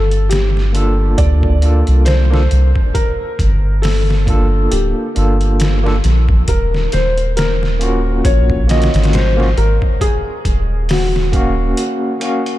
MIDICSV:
0, 0, Header, 1, 5, 480
1, 0, Start_track
1, 0, Tempo, 882353
1, 1605, Time_signature, 4, 2, 24, 8
1, 6846, End_track
2, 0, Start_track
2, 0, Title_t, "Felt piano"
2, 0, Program_c, 0, 0
2, 0, Note_on_c, 0, 69, 90
2, 149, Note_off_c, 0, 69, 0
2, 159, Note_on_c, 0, 67, 83
2, 620, Note_off_c, 0, 67, 0
2, 640, Note_on_c, 0, 74, 97
2, 1116, Note_on_c, 0, 72, 99
2, 1137, Note_off_c, 0, 74, 0
2, 1601, Note_on_c, 0, 70, 94
2, 1615, Note_off_c, 0, 72, 0
2, 2061, Note_off_c, 0, 70, 0
2, 2078, Note_on_c, 0, 69, 80
2, 2562, Note_on_c, 0, 67, 74
2, 2576, Note_off_c, 0, 69, 0
2, 3262, Note_off_c, 0, 67, 0
2, 3529, Note_on_c, 0, 70, 93
2, 3751, Note_off_c, 0, 70, 0
2, 3769, Note_on_c, 0, 72, 96
2, 4008, Note_on_c, 0, 70, 93
2, 4014, Note_off_c, 0, 72, 0
2, 4489, Note_on_c, 0, 73, 96
2, 4501, Note_off_c, 0, 70, 0
2, 4730, Note_on_c, 0, 75, 100
2, 4734, Note_off_c, 0, 73, 0
2, 4974, Note_off_c, 0, 75, 0
2, 4974, Note_on_c, 0, 72, 100
2, 5210, Note_on_c, 0, 70, 96
2, 5216, Note_off_c, 0, 72, 0
2, 5446, Note_on_c, 0, 68, 93
2, 5455, Note_off_c, 0, 70, 0
2, 5933, Note_on_c, 0, 66, 76
2, 5940, Note_off_c, 0, 68, 0
2, 6846, Note_off_c, 0, 66, 0
2, 6846, End_track
3, 0, Start_track
3, 0, Title_t, "Tine electric piano"
3, 0, Program_c, 1, 4
3, 396, Note_on_c, 1, 58, 71
3, 404, Note_on_c, 1, 62, 71
3, 411, Note_on_c, 1, 65, 69
3, 419, Note_on_c, 1, 69, 86
3, 855, Note_off_c, 1, 58, 0
3, 859, Note_off_c, 1, 62, 0
3, 863, Note_off_c, 1, 65, 0
3, 867, Note_off_c, 1, 69, 0
3, 879, Note_on_c, 1, 58, 71
3, 885, Note_on_c, 1, 62, 63
3, 891, Note_on_c, 1, 65, 63
3, 900, Note_on_c, 1, 69, 73
3, 1225, Note_off_c, 1, 58, 0
3, 1228, Note_off_c, 1, 62, 0
3, 1231, Note_off_c, 1, 65, 0
3, 1235, Note_off_c, 1, 69, 0
3, 1253, Note_on_c, 1, 58, 81
3, 1261, Note_on_c, 1, 62, 68
3, 1267, Note_on_c, 1, 65, 68
3, 1275, Note_on_c, 1, 69, 80
3, 1315, Note_off_c, 1, 58, 0
3, 1319, Note_off_c, 1, 62, 0
3, 1322, Note_off_c, 1, 65, 0
3, 1326, Note_off_c, 1, 69, 0
3, 2317, Note_on_c, 1, 58, 73
3, 2323, Note_on_c, 1, 62, 71
3, 2332, Note_on_c, 1, 65, 68
3, 2338, Note_on_c, 1, 69, 88
3, 2776, Note_off_c, 1, 58, 0
3, 2779, Note_off_c, 1, 62, 0
3, 2783, Note_off_c, 1, 65, 0
3, 2786, Note_off_c, 1, 69, 0
3, 2801, Note_on_c, 1, 58, 69
3, 2807, Note_on_c, 1, 62, 66
3, 2816, Note_on_c, 1, 65, 67
3, 2823, Note_on_c, 1, 69, 78
3, 3146, Note_off_c, 1, 58, 0
3, 3149, Note_off_c, 1, 62, 0
3, 3153, Note_off_c, 1, 65, 0
3, 3157, Note_off_c, 1, 69, 0
3, 3175, Note_on_c, 1, 58, 83
3, 3182, Note_on_c, 1, 62, 71
3, 3189, Note_on_c, 1, 65, 73
3, 3196, Note_on_c, 1, 69, 85
3, 3236, Note_off_c, 1, 58, 0
3, 3240, Note_off_c, 1, 62, 0
3, 3243, Note_off_c, 1, 65, 0
3, 3247, Note_off_c, 1, 69, 0
3, 4238, Note_on_c, 1, 58, 79
3, 4246, Note_on_c, 1, 61, 72
3, 4253, Note_on_c, 1, 65, 77
3, 4259, Note_on_c, 1, 66, 87
3, 4696, Note_off_c, 1, 58, 0
3, 4700, Note_off_c, 1, 61, 0
3, 4704, Note_off_c, 1, 65, 0
3, 4707, Note_off_c, 1, 66, 0
3, 4718, Note_on_c, 1, 58, 74
3, 4726, Note_on_c, 1, 61, 65
3, 4733, Note_on_c, 1, 65, 68
3, 4741, Note_on_c, 1, 66, 80
3, 5064, Note_off_c, 1, 58, 0
3, 5068, Note_off_c, 1, 61, 0
3, 5072, Note_off_c, 1, 65, 0
3, 5076, Note_off_c, 1, 66, 0
3, 5097, Note_on_c, 1, 58, 81
3, 5103, Note_on_c, 1, 61, 71
3, 5110, Note_on_c, 1, 65, 74
3, 5118, Note_on_c, 1, 66, 83
3, 5157, Note_off_c, 1, 58, 0
3, 5160, Note_off_c, 1, 61, 0
3, 5164, Note_off_c, 1, 65, 0
3, 5168, Note_off_c, 1, 66, 0
3, 6158, Note_on_c, 1, 58, 80
3, 6166, Note_on_c, 1, 61, 73
3, 6174, Note_on_c, 1, 77, 71
3, 6182, Note_on_c, 1, 66, 93
3, 6616, Note_off_c, 1, 58, 0
3, 6620, Note_off_c, 1, 61, 0
3, 6624, Note_off_c, 1, 77, 0
3, 6628, Note_off_c, 1, 66, 0
3, 6638, Note_on_c, 1, 58, 74
3, 6645, Note_on_c, 1, 61, 66
3, 6653, Note_on_c, 1, 77, 67
3, 6661, Note_on_c, 1, 66, 82
3, 6846, Note_off_c, 1, 58, 0
3, 6846, Note_off_c, 1, 61, 0
3, 6846, Note_off_c, 1, 66, 0
3, 6846, Note_off_c, 1, 77, 0
3, 6846, End_track
4, 0, Start_track
4, 0, Title_t, "Sub bass"
4, 0, Program_c, 2, 38
4, 0, Note_on_c, 2, 31, 83
4, 627, Note_off_c, 2, 31, 0
4, 646, Note_on_c, 2, 38, 83
4, 995, Note_off_c, 2, 38, 0
4, 1023, Note_on_c, 2, 36, 103
4, 1346, Note_off_c, 2, 36, 0
4, 1370, Note_on_c, 2, 36, 93
4, 1486, Note_off_c, 2, 36, 0
4, 1846, Note_on_c, 2, 31, 84
4, 2545, Note_off_c, 2, 31, 0
4, 2566, Note_on_c, 2, 26, 91
4, 2685, Note_off_c, 2, 26, 0
4, 2809, Note_on_c, 2, 31, 84
4, 3267, Note_off_c, 2, 31, 0
4, 3287, Note_on_c, 2, 34, 81
4, 3501, Note_off_c, 2, 34, 0
4, 3527, Note_on_c, 2, 27, 93
4, 3741, Note_off_c, 2, 27, 0
4, 3771, Note_on_c, 2, 27, 87
4, 4468, Note_off_c, 2, 27, 0
4, 4488, Note_on_c, 2, 34, 86
4, 4836, Note_off_c, 2, 34, 0
4, 4865, Note_on_c, 2, 32, 95
4, 5187, Note_off_c, 2, 32, 0
4, 5207, Note_on_c, 2, 32, 101
4, 5325, Note_off_c, 2, 32, 0
4, 5687, Note_on_c, 2, 27, 85
4, 6386, Note_off_c, 2, 27, 0
4, 6846, End_track
5, 0, Start_track
5, 0, Title_t, "Drums"
5, 62, Note_on_c, 9, 42, 39
5, 117, Note_off_c, 9, 42, 0
5, 167, Note_on_c, 9, 42, 85
5, 177, Note_on_c, 9, 38, 106
5, 221, Note_off_c, 9, 42, 0
5, 231, Note_off_c, 9, 38, 0
5, 310, Note_on_c, 9, 38, 39
5, 365, Note_off_c, 9, 38, 0
5, 406, Note_on_c, 9, 42, 63
5, 460, Note_off_c, 9, 42, 0
5, 642, Note_on_c, 9, 42, 85
5, 643, Note_on_c, 9, 36, 109
5, 696, Note_off_c, 9, 42, 0
5, 698, Note_off_c, 9, 36, 0
5, 779, Note_on_c, 9, 36, 85
5, 833, Note_off_c, 9, 36, 0
5, 882, Note_on_c, 9, 42, 65
5, 937, Note_off_c, 9, 42, 0
5, 1017, Note_on_c, 9, 42, 40
5, 1072, Note_off_c, 9, 42, 0
5, 1121, Note_on_c, 9, 42, 84
5, 1130, Note_on_c, 9, 38, 110
5, 1175, Note_off_c, 9, 42, 0
5, 1185, Note_off_c, 9, 38, 0
5, 1271, Note_on_c, 9, 38, 56
5, 1325, Note_off_c, 9, 38, 0
5, 1365, Note_on_c, 9, 42, 67
5, 1420, Note_off_c, 9, 42, 0
5, 1499, Note_on_c, 9, 36, 92
5, 1553, Note_off_c, 9, 36, 0
5, 1604, Note_on_c, 9, 36, 105
5, 1605, Note_on_c, 9, 42, 87
5, 1658, Note_off_c, 9, 36, 0
5, 1659, Note_off_c, 9, 42, 0
5, 1844, Note_on_c, 9, 36, 92
5, 1847, Note_on_c, 9, 42, 68
5, 1898, Note_off_c, 9, 36, 0
5, 1901, Note_off_c, 9, 42, 0
5, 2085, Note_on_c, 9, 46, 71
5, 2094, Note_on_c, 9, 38, 107
5, 2139, Note_off_c, 9, 46, 0
5, 2149, Note_off_c, 9, 38, 0
5, 2233, Note_on_c, 9, 38, 43
5, 2287, Note_off_c, 9, 38, 0
5, 2324, Note_on_c, 9, 36, 95
5, 2327, Note_on_c, 9, 42, 70
5, 2379, Note_off_c, 9, 36, 0
5, 2381, Note_off_c, 9, 42, 0
5, 2565, Note_on_c, 9, 42, 89
5, 2620, Note_off_c, 9, 42, 0
5, 2807, Note_on_c, 9, 42, 68
5, 2861, Note_off_c, 9, 42, 0
5, 2941, Note_on_c, 9, 42, 39
5, 2996, Note_off_c, 9, 42, 0
5, 3045, Note_on_c, 9, 42, 92
5, 3055, Note_on_c, 9, 38, 114
5, 3099, Note_off_c, 9, 42, 0
5, 3109, Note_off_c, 9, 38, 0
5, 3190, Note_on_c, 9, 38, 45
5, 3245, Note_off_c, 9, 38, 0
5, 3285, Note_on_c, 9, 42, 67
5, 3295, Note_on_c, 9, 38, 43
5, 3340, Note_off_c, 9, 42, 0
5, 3350, Note_off_c, 9, 38, 0
5, 3420, Note_on_c, 9, 36, 90
5, 3474, Note_off_c, 9, 36, 0
5, 3523, Note_on_c, 9, 42, 86
5, 3525, Note_on_c, 9, 36, 106
5, 3578, Note_off_c, 9, 42, 0
5, 3579, Note_off_c, 9, 36, 0
5, 3669, Note_on_c, 9, 38, 40
5, 3724, Note_off_c, 9, 38, 0
5, 3766, Note_on_c, 9, 42, 64
5, 3776, Note_on_c, 9, 38, 51
5, 3820, Note_off_c, 9, 42, 0
5, 3830, Note_off_c, 9, 38, 0
5, 3903, Note_on_c, 9, 42, 38
5, 3958, Note_off_c, 9, 42, 0
5, 4009, Note_on_c, 9, 42, 85
5, 4019, Note_on_c, 9, 38, 106
5, 4064, Note_off_c, 9, 42, 0
5, 4073, Note_off_c, 9, 38, 0
5, 4150, Note_on_c, 9, 38, 41
5, 4205, Note_off_c, 9, 38, 0
5, 4248, Note_on_c, 9, 42, 69
5, 4303, Note_off_c, 9, 42, 0
5, 4486, Note_on_c, 9, 36, 103
5, 4487, Note_on_c, 9, 42, 92
5, 4541, Note_off_c, 9, 36, 0
5, 4541, Note_off_c, 9, 42, 0
5, 4622, Note_on_c, 9, 36, 83
5, 4676, Note_off_c, 9, 36, 0
5, 4729, Note_on_c, 9, 42, 64
5, 4739, Note_on_c, 9, 38, 85
5, 4783, Note_off_c, 9, 42, 0
5, 4793, Note_off_c, 9, 38, 0
5, 4796, Note_on_c, 9, 42, 63
5, 4806, Note_on_c, 9, 38, 86
5, 4851, Note_off_c, 9, 42, 0
5, 4860, Note_off_c, 9, 38, 0
5, 4863, Note_on_c, 9, 42, 65
5, 4873, Note_on_c, 9, 38, 86
5, 4915, Note_off_c, 9, 42, 0
5, 4915, Note_on_c, 9, 42, 61
5, 4925, Note_off_c, 9, 38, 0
5, 4925, Note_on_c, 9, 38, 81
5, 4968, Note_off_c, 9, 42, 0
5, 4968, Note_on_c, 9, 42, 84
5, 4978, Note_off_c, 9, 38, 0
5, 4978, Note_on_c, 9, 38, 115
5, 5022, Note_off_c, 9, 42, 0
5, 5032, Note_off_c, 9, 38, 0
5, 5113, Note_on_c, 9, 38, 53
5, 5167, Note_off_c, 9, 38, 0
5, 5209, Note_on_c, 9, 42, 64
5, 5263, Note_off_c, 9, 42, 0
5, 5342, Note_on_c, 9, 36, 93
5, 5396, Note_off_c, 9, 36, 0
5, 5446, Note_on_c, 9, 36, 106
5, 5448, Note_on_c, 9, 42, 89
5, 5500, Note_off_c, 9, 36, 0
5, 5502, Note_off_c, 9, 42, 0
5, 5685, Note_on_c, 9, 36, 94
5, 5686, Note_on_c, 9, 42, 70
5, 5739, Note_off_c, 9, 36, 0
5, 5741, Note_off_c, 9, 42, 0
5, 5924, Note_on_c, 9, 46, 77
5, 5934, Note_on_c, 9, 38, 111
5, 5978, Note_off_c, 9, 46, 0
5, 5988, Note_off_c, 9, 38, 0
5, 6071, Note_on_c, 9, 38, 44
5, 6125, Note_off_c, 9, 38, 0
5, 6164, Note_on_c, 9, 36, 95
5, 6165, Note_on_c, 9, 42, 66
5, 6218, Note_off_c, 9, 36, 0
5, 6219, Note_off_c, 9, 42, 0
5, 6405, Note_on_c, 9, 42, 91
5, 6459, Note_off_c, 9, 42, 0
5, 6643, Note_on_c, 9, 42, 65
5, 6697, Note_off_c, 9, 42, 0
5, 6780, Note_on_c, 9, 42, 40
5, 6834, Note_off_c, 9, 42, 0
5, 6846, End_track
0, 0, End_of_file